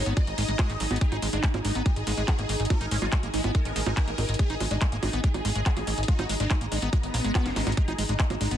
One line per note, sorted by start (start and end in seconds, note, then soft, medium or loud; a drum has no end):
0.00 7.76 D#4 medium
0.00 8.57 G#4 medium
0.00 8.57 D#5 medium
0.00 1.73 A#5 medium
0.06 0.13 G#1 medium
0.06 0.14 B3 medium
0.06 closed hi-hat soft
0.17 0.22 G#3 medium
0.17 0.93 D#5 loud
0.17 kick loud
0.17 closed hi-hat medium
0.17 high bongo soft
0.27 0.34 G#1 medium
0.27 closed hi-hat medium
0.38 0.45 G#1 loud
0.38 0.43 G#3 loud
0.38 open hi-hat loud
0.48 0.55 G#1 medium
0.48 0.51 G#3 medium
0.48 closed hi-hat medium
0.59 0.71 G#3 loud
0.59 kick loud
0.59 clap loud
0.59 closed hi-hat medium
0.59 high bongo medium
0.70 0.76 G#1 medium
0.70 0.73 A#3 loud
0.70 closed hi-hat medium
0.80 0.87 G#1 loud
0.80 0.85 F#3 medium
0.80 open hi-hat medium
0.91 0.97 G#1 medium
0.91 0.98 B3 loud
0.91 closed hi-hat medium
0.91 high bongo soft
0.96 closed hi-hat medium
1.01 1.06 G#3 medium
1.01 1.19 G#4 loud
1.01 kick loud
1.01 closed hi-hat medium
1.12 1.19 G#1 medium
1.12 1.17 D#4 medium
1.12 closed hi-hat soft
1.12 high bongo soft
1.22 1.29 G#1 loud
1.22 1.27 G#3 loud
1.22 open hi-hat loud
1.33 1.40 G#1 medium
1.33 1.38 G#3 medium
1.33 1.51 D#4 medium
1.33 closed hi-hat medium
1.44 1.49 G#3 loud
1.44 kick loud
1.44 clap loud
1.44 closed hi-hat medium
1.54 1.61 G#1 medium
1.54 1.59 A#3 medium
1.54 closed hi-hat soft
1.54 high bongo medium
1.65 1.71 G#1 loud
1.65 1.72 G#3 medium
1.65 1.77 D#4 medium
1.65 open hi-hat medium
1.71 1.82 G#1 medium
1.71 1.83 B3 medium
1.71 5.11 G#5 medium
1.71 closed hi-hat medium
1.86 1.91 G#3 medium
1.86 2.62 G#4 loud
1.86 kick loud
1.86 closed hi-hat medium
1.86 high bongo soft
1.96 2.03 G#1 medium
1.96 closed hi-hat medium
2.07 2.14 G#1 loud
2.07 2.12 G#3 loud
2.07 2.14 B3 medium
2.07 open hi-hat loud
2.17 2.24 G#1 medium
2.17 2.22 G#3 medium
2.17 2.24 B3 medium
2.17 closed hi-hat medium
2.28 2.33 F#3 medium
2.28 kick loud
2.28 clap loud
2.28 closed hi-hat medium
2.28 high bongo soft
2.39 2.45 G#1 medium
2.39 2.42 A#3 medium
2.39 closed hi-hat medium
2.49 2.56 G#1 loud
2.49 2.52 G#3 medium
2.49 2.56 D#4 medium
2.49 open hi-hat medium
2.60 2.66 G#1 loud
2.60 2.66 D#4 medium
2.60 closed hi-hat soft
2.65 closed hi-hat medium
2.70 2.75 G#3 medium
2.70 2.88 A#4 loud
2.70 kick loud
2.70 closed hi-hat medium
2.70 high bongo medium
2.81 2.88 G#1 medium
2.81 2.86 D#4 loud
2.81 closed hi-hat medium
2.91 2.98 G#1 loud
2.91 2.96 G#3 loud
2.91 2.98 C#4 loud
2.91 open hi-hat loud
3.02 3.09 G#1 loud
3.02 3.07 G#3 medium
3.02 3.09 C#4 medium
3.02 3.20 F#4 medium
3.02 closed hi-hat medium
3.02 high bongo soft
3.12 3.18 G#3 loud
3.12 kick loud
3.12 clap loud
3.12 closed hi-hat medium
3.23 3.30 G#1 medium
3.23 3.28 A#3 medium
3.23 closed hi-hat soft
3.34 3.40 G#1 loud
3.34 3.41 G#3 medium
3.34 3.46 E4 medium
3.34 open hi-hat medium
3.44 3.51 G#1 medium
3.44 3.52 B3 medium
3.44 closed hi-hat medium
3.44 high bongo soft
3.55 3.60 G#3 medium
3.55 4.31 A#4 loud
3.55 kick loud
3.55 closed hi-hat medium
3.65 3.72 G#1 medium
3.65 3.72 B3 medium
3.65 closed hi-hat medium
3.76 3.83 G#1 loud
3.76 3.81 G#3 loud
3.76 3.83 B3 medium
3.76 open hi-hat loud
3.86 3.93 G#1 medium
3.86 3.91 G#3 medium
3.86 4.18 D#4 loud
3.86 closed hi-hat medium
3.86 high bongo medium
3.97 4.02 F#3 medium
3.97 kick loud
3.97 clap loud
3.97 closed hi-hat medium
4.08 4.14 G#1 medium
4.08 4.11 A#3 medium
4.08 closed hi-hat medium
4.18 4.25 G#1 loud
4.18 4.21 G#3 medium
4.18 open hi-hat medium
4.18 high bongo soft
4.29 4.35 G#1 medium
4.29 closed hi-hat medium
4.34 closed hi-hat medium
4.39 4.44 G#3 medium
4.39 4.57 G#4 loud
4.39 kick loud
4.39 closed hi-hat medium
4.50 4.57 G#1 medium
4.50 4.55 D#4 loud
4.50 closed hi-hat medium
4.60 4.67 G#1 loud
4.60 4.65 G#3 loud
4.60 open hi-hat loud
4.60 high bongo soft
4.71 4.78 G#1 medium
4.71 4.76 G#3 medium
4.71 4.89 D#4 medium
4.71 closed hi-hat medium
4.82 4.87 G#3 loud
4.82 kick loud
4.82 clap loud
4.82 closed hi-hat medium
4.92 4.99 G#1 medium
4.92 4.97 A#3 medium
4.92 closed hi-hat medium
5.03 5.09 G#1 medium
5.03 5.10 G#3 medium
5.03 5.15 D#4 medium
5.03 open hi-hat medium
5.03 high bongo medium
5.09 5.20 G#1 loud
5.09 5.21 B3 medium
5.09 8.50 A#5 medium
5.09 closed hi-hat medium
5.24 5.29 G#3 medium
5.24 6.00 G#4 loud
5.24 kick loud
5.24 closed hi-hat medium
5.34 5.41 G#1 medium
5.34 closed hi-hat medium
5.34 high bongo soft
5.45 5.52 G#1 loud
5.45 5.50 G#3 loud
5.45 open hi-hat loud
5.55 5.62 G#1 medium
5.55 5.60 G#3 medium
5.55 closed hi-hat medium
5.66 5.71 F#3 medium
5.66 kick loud
5.66 clap loud
5.66 closed hi-hat medium
5.77 5.83 G#1 medium
5.77 5.80 A#3 medium
5.77 closed hi-hat medium
5.77 high bongo soft
5.87 5.94 G#1 loud
5.87 5.90 G#3 medium
5.87 open hi-hat medium
5.98 6.04 G#1 medium
5.98 closed hi-hat medium
6.03 closed hi-hat medium
6.08 6.13 G#3 medium
6.08 6.26 F#4 loud
6.08 kick loud
6.08 closed hi-hat medium
6.19 6.26 G#1 medium
6.19 6.24 D#4 medium
6.19 closed hi-hat medium
6.19 high bongo medium
6.29 6.36 G#1 loud
6.29 6.34 G#3 loud
6.29 open hi-hat loud
6.40 6.47 G#1 loud
6.40 6.45 G#3 medium
6.40 6.58 D#4 loud
6.40 closed hi-hat medium
6.51 6.56 G#3 loud
6.51 kick loud
6.51 clap loud
6.51 closed hi-hat medium
6.51 high bongo soft
6.61 6.68 G#1 medium
6.61 6.66 A#3 medium
6.61 closed hi-hat medium
6.72 6.78 G#1 loud
6.72 6.79 G#3 medium
6.72 6.84 D#4 medium
6.72 open hi-hat medium
6.82 6.89 G#1 medium
6.82 6.90 B3 medium
6.82 closed hi-hat medium
6.93 6.98 G#3 medium
6.93 7.69 B3 medium
6.93 kick loud
6.93 closed hi-hat medium
6.93 high bongo soft
6.93 swell medium
7.03 7.10 G#1 medium
7.03 closed hi-hat medium
7.14 7.21 A#1 loud
7.14 7.17 A#3 loud
7.14 open hi-hat loud
7.25 7.31 G#1 medium
7.25 7.32 G#3 loud
7.25 closed hi-hat medium
7.35 7.47 B3 loud
7.35 kick loud
7.35 snare medium
7.35 clap loud
7.35 closed hi-hat medium
7.35 high bongo medium
7.46 7.52 F#1 medium
7.46 7.51 A#3 medium
7.46 snare medium
7.46 closed hi-hat medium
7.56 7.63 G#1 loud
7.56 7.61 G#3 medium
7.56 snare medium
7.56 open hi-hat medium
7.67 7.73 G#1 medium
7.67 7.72 G#3 medium
7.67 snare medium
7.67 closed hi-hat medium
7.67 high bongo soft
7.72 closed hi-hat medium
7.77 7.82 G#3 medium
7.77 8.57 D#4 medium
7.77 7.95 G#4 loud
7.77 kick loud
7.77 closed hi-hat medium
7.88 7.95 G#1 medium
7.88 7.93 D#4 loud
7.88 closed hi-hat medium
7.88 high bongo soft
7.98 8.05 G#1 loud
7.98 8.03 G#3 loud
7.98 open hi-hat loud
8.09 8.16 G#1 medium
8.09 8.14 G#3 medium
8.09 8.27 D#4 medium
8.09 closed hi-hat medium
8.20 8.25 G#3 loud
8.20 kick loud
8.20 clap loud
8.20 closed hi-hat medium
8.30 8.37 G#1 medium
8.30 8.35 A#3 medium
8.30 closed hi-hat medium
8.30 high bongo medium
8.41 8.47 G#1 loud
8.41 8.48 G#3 medium
8.41 8.53 D#4 medium
8.41 open hi-hat medium
8.47 8.57 G#1 medium
8.47 8.57 B3 medium
8.47 8.57 G#5 medium
8.47 closed hi-hat medium